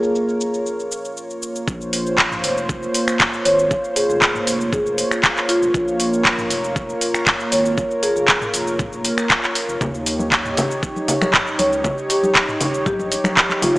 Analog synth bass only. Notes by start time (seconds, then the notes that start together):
1.68 A#1
2.44 F1
3.46 G#1
4.10 F1
4.47 F1
4.73 F1
5.62 F1
5.74 A#1
6.50 F1
7.52 G#1
8.17 F1
8.54 F1
8.79 F1
9.69 F1
9.81 D#2
10.57 D#1
11.59 C#2
12.23 D#1
12.61 D#1
12.86 A#1